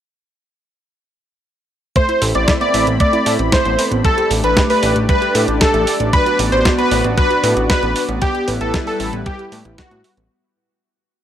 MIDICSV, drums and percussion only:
0, 0, Header, 1, 2, 480
1, 0, Start_track
1, 0, Tempo, 521739
1, 1801, Time_signature, 4, 2, 24, 8
1, 10338, End_track
2, 0, Start_track
2, 0, Title_t, "Drums"
2, 1801, Note_on_c, 9, 36, 117
2, 1801, Note_on_c, 9, 42, 69
2, 1893, Note_off_c, 9, 36, 0
2, 1893, Note_off_c, 9, 42, 0
2, 1921, Note_on_c, 9, 42, 41
2, 2013, Note_off_c, 9, 42, 0
2, 2040, Note_on_c, 9, 46, 113
2, 2132, Note_off_c, 9, 46, 0
2, 2161, Note_on_c, 9, 42, 41
2, 2253, Note_off_c, 9, 42, 0
2, 2280, Note_on_c, 9, 38, 120
2, 2280, Note_on_c, 9, 42, 69
2, 2282, Note_on_c, 9, 36, 124
2, 2372, Note_off_c, 9, 38, 0
2, 2372, Note_off_c, 9, 42, 0
2, 2374, Note_off_c, 9, 36, 0
2, 2401, Note_on_c, 9, 42, 42
2, 2493, Note_off_c, 9, 42, 0
2, 2521, Note_on_c, 9, 46, 109
2, 2613, Note_off_c, 9, 46, 0
2, 2641, Note_on_c, 9, 42, 42
2, 2733, Note_off_c, 9, 42, 0
2, 2760, Note_on_c, 9, 42, 70
2, 2762, Note_on_c, 9, 36, 119
2, 2852, Note_off_c, 9, 42, 0
2, 2854, Note_off_c, 9, 36, 0
2, 2881, Note_on_c, 9, 42, 40
2, 2973, Note_off_c, 9, 42, 0
2, 3001, Note_on_c, 9, 46, 113
2, 3093, Note_off_c, 9, 46, 0
2, 3121, Note_on_c, 9, 42, 41
2, 3213, Note_off_c, 9, 42, 0
2, 3241, Note_on_c, 9, 38, 124
2, 3241, Note_on_c, 9, 42, 72
2, 3242, Note_on_c, 9, 36, 120
2, 3333, Note_off_c, 9, 38, 0
2, 3333, Note_off_c, 9, 42, 0
2, 3334, Note_off_c, 9, 36, 0
2, 3362, Note_on_c, 9, 42, 42
2, 3454, Note_off_c, 9, 42, 0
2, 3484, Note_on_c, 9, 46, 113
2, 3576, Note_off_c, 9, 46, 0
2, 3603, Note_on_c, 9, 42, 44
2, 3695, Note_off_c, 9, 42, 0
2, 3722, Note_on_c, 9, 36, 123
2, 3723, Note_on_c, 9, 42, 69
2, 3814, Note_off_c, 9, 36, 0
2, 3815, Note_off_c, 9, 42, 0
2, 3844, Note_on_c, 9, 42, 43
2, 3936, Note_off_c, 9, 42, 0
2, 3963, Note_on_c, 9, 46, 109
2, 4055, Note_off_c, 9, 46, 0
2, 4083, Note_on_c, 9, 42, 41
2, 4175, Note_off_c, 9, 42, 0
2, 4202, Note_on_c, 9, 36, 127
2, 4202, Note_on_c, 9, 38, 127
2, 4202, Note_on_c, 9, 42, 70
2, 4294, Note_off_c, 9, 36, 0
2, 4294, Note_off_c, 9, 38, 0
2, 4294, Note_off_c, 9, 42, 0
2, 4323, Note_on_c, 9, 46, 64
2, 4415, Note_off_c, 9, 46, 0
2, 4441, Note_on_c, 9, 46, 106
2, 4533, Note_off_c, 9, 46, 0
2, 4562, Note_on_c, 9, 42, 43
2, 4654, Note_off_c, 9, 42, 0
2, 4682, Note_on_c, 9, 36, 124
2, 4682, Note_on_c, 9, 42, 71
2, 4774, Note_off_c, 9, 36, 0
2, 4774, Note_off_c, 9, 42, 0
2, 4802, Note_on_c, 9, 42, 41
2, 4894, Note_off_c, 9, 42, 0
2, 4922, Note_on_c, 9, 46, 108
2, 5014, Note_off_c, 9, 46, 0
2, 5042, Note_on_c, 9, 42, 41
2, 5134, Note_off_c, 9, 42, 0
2, 5161, Note_on_c, 9, 38, 126
2, 5161, Note_on_c, 9, 42, 72
2, 5162, Note_on_c, 9, 36, 123
2, 5253, Note_off_c, 9, 38, 0
2, 5253, Note_off_c, 9, 42, 0
2, 5254, Note_off_c, 9, 36, 0
2, 5281, Note_on_c, 9, 42, 41
2, 5373, Note_off_c, 9, 42, 0
2, 5402, Note_on_c, 9, 46, 106
2, 5494, Note_off_c, 9, 46, 0
2, 5521, Note_on_c, 9, 42, 44
2, 5613, Note_off_c, 9, 42, 0
2, 5641, Note_on_c, 9, 42, 69
2, 5642, Note_on_c, 9, 36, 127
2, 5733, Note_off_c, 9, 42, 0
2, 5734, Note_off_c, 9, 36, 0
2, 5762, Note_on_c, 9, 42, 42
2, 5854, Note_off_c, 9, 42, 0
2, 5880, Note_on_c, 9, 46, 104
2, 5972, Note_off_c, 9, 46, 0
2, 6001, Note_on_c, 9, 42, 40
2, 6093, Note_off_c, 9, 42, 0
2, 6122, Note_on_c, 9, 36, 127
2, 6122, Note_on_c, 9, 38, 127
2, 6122, Note_on_c, 9, 42, 69
2, 6214, Note_off_c, 9, 36, 0
2, 6214, Note_off_c, 9, 38, 0
2, 6214, Note_off_c, 9, 42, 0
2, 6242, Note_on_c, 9, 42, 41
2, 6334, Note_off_c, 9, 42, 0
2, 6361, Note_on_c, 9, 46, 102
2, 6453, Note_off_c, 9, 46, 0
2, 6481, Note_on_c, 9, 42, 42
2, 6573, Note_off_c, 9, 42, 0
2, 6602, Note_on_c, 9, 36, 125
2, 6602, Note_on_c, 9, 42, 69
2, 6694, Note_off_c, 9, 36, 0
2, 6694, Note_off_c, 9, 42, 0
2, 6721, Note_on_c, 9, 42, 39
2, 6813, Note_off_c, 9, 42, 0
2, 6841, Note_on_c, 9, 46, 106
2, 6933, Note_off_c, 9, 46, 0
2, 6962, Note_on_c, 9, 42, 41
2, 7054, Note_off_c, 9, 42, 0
2, 7081, Note_on_c, 9, 38, 124
2, 7081, Note_on_c, 9, 42, 69
2, 7082, Note_on_c, 9, 36, 124
2, 7173, Note_off_c, 9, 38, 0
2, 7173, Note_off_c, 9, 42, 0
2, 7174, Note_off_c, 9, 36, 0
2, 7201, Note_on_c, 9, 42, 40
2, 7293, Note_off_c, 9, 42, 0
2, 7320, Note_on_c, 9, 46, 103
2, 7412, Note_off_c, 9, 46, 0
2, 7439, Note_on_c, 9, 42, 43
2, 7531, Note_off_c, 9, 42, 0
2, 7559, Note_on_c, 9, 42, 64
2, 7561, Note_on_c, 9, 36, 123
2, 7651, Note_off_c, 9, 42, 0
2, 7653, Note_off_c, 9, 36, 0
2, 7679, Note_on_c, 9, 42, 40
2, 7771, Note_off_c, 9, 42, 0
2, 7799, Note_on_c, 9, 46, 104
2, 7891, Note_off_c, 9, 46, 0
2, 7920, Note_on_c, 9, 42, 38
2, 8012, Note_off_c, 9, 42, 0
2, 8040, Note_on_c, 9, 38, 125
2, 8040, Note_on_c, 9, 42, 67
2, 8042, Note_on_c, 9, 36, 127
2, 8132, Note_off_c, 9, 38, 0
2, 8132, Note_off_c, 9, 42, 0
2, 8134, Note_off_c, 9, 36, 0
2, 8159, Note_on_c, 9, 46, 60
2, 8251, Note_off_c, 9, 46, 0
2, 8279, Note_on_c, 9, 46, 101
2, 8371, Note_off_c, 9, 46, 0
2, 8400, Note_on_c, 9, 42, 40
2, 8492, Note_off_c, 9, 42, 0
2, 8519, Note_on_c, 9, 42, 67
2, 8521, Note_on_c, 9, 36, 126
2, 8611, Note_off_c, 9, 42, 0
2, 8613, Note_off_c, 9, 36, 0
2, 8641, Note_on_c, 9, 42, 39
2, 8733, Note_off_c, 9, 42, 0
2, 8759, Note_on_c, 9, 46, 103
2, 8851, Note_off_c, 9, 46, 0
2, 8880, Note_on_c, 9, 42, 39
2, 8972, Note_off_c, 9, 42, 0
2, 9000, Note_on_c, 9, 38, 126
2, 9000, Note_on_c, 9, 42, 66
2, 9001, Note_on_c, 9, 36, 127
2, 9092, Note_off_c, 9, 38, 0
2, 9092, Note_off_c, 9, 42, 0
2, 9093, Note_off_c, 9, 36, 0
2, 9120, Note_on_c, 9, 42, 38
2, 9212, Note_off_c, 9, 42, 0
2, 9239, Note_on_c, 9, 46, 101
2, 9331, Note_off_c, 9, 46, 0
2, 9360, Note_on_c, 9, 42, 40
2, 9452, Note_off_c, 9, 42, 0
2, 10338, End_track
0, 0, End_of_file